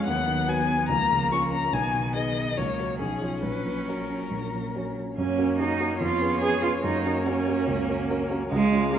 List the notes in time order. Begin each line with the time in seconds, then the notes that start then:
Already playing: F3 G#3
0.06 D#2 F#3 B3 F#5
0.27 D#3
0.48 B3 F#4 B4 G#5
0.69 B3
0.89 C#2 F3 A#3 A#5
1.10 C#3
1.31 C#4 F4 A#4 C#6
1.51 C#4 A#5
1.72 B1 D#3 B3 G#5
1.94 B2
2.15 D#4 G#4 B4 D#5
2.36 D#4
2.57 C#2 F#3 A#3 C#5
2.80 F#4 A#4
2.99 B1 F3 C#4 G#4
3.22 F4 C#5
3.43 A#1 F#3 B4
3.65 A#2
3.88 C#4 F#4 A#4 C#5
4.09 C#4
4.31 A#1
4.54 A#2
4.75 C#4 F#4 C#5
4.96 C#4
5.17 F#2 A#3 C#4 C#5
5.38 C#4 F#4 A#4
5.59 C#4 D#4 F#4 A#4
5.80 C#4 F#4 A#4
6.00 F2 B3 F4
6.21 C#4 G#4 B4
6.41 C#4 G#4 B4
6.63 C#4 F4 G#4 B4
6.83 F#2 A#3 D#4
7.05 C#4 F#4 A#4
7.26 C#4 F#4 A#4
7.47 C#4 F#4 A#4
7.67 C#2
7.88 C#4 F#4 A#4
8.10 C#4 F#4 A#4
8.30 C#4 F#4 A#4
8.52 C#2 G#3 F5
8.72 C#4 F4 G#4
8.93 A#3 C#4 F4 G#4